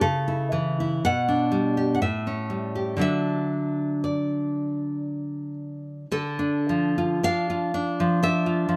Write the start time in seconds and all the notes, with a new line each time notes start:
0.01 C#3 A4
0.28 E4
0.52 E3
0.80 E4
1.05 B2 F#5
1.29 D4
1.52 G3
1.77 G4
1.95 F#5
2.02 A2 E5
2.27 C#4
2.50 G3
2.75 G4
2.97 D3 F#3 D4
3.01 E5
4.04 D5
6.12 D3 A4
6.39 D4
6.69 F3
6.98 F4
7.23 D4 F5
7.50 F4
7.74 D4
8.00 F3
8.23 D4 E5
8.46 F4
8.69 F3